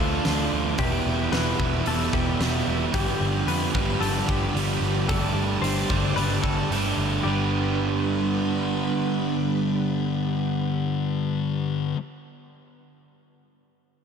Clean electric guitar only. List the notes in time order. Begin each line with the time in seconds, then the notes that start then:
Already playing: A4
0.79 G4
1.32 B4
1.87 A4
2.13 G4
2.94 G4
3.48 B4
4.01 A4
4.28 G4
5.09 A4
5.62 C5
6.16 B4
6.42 A4
7.23 G4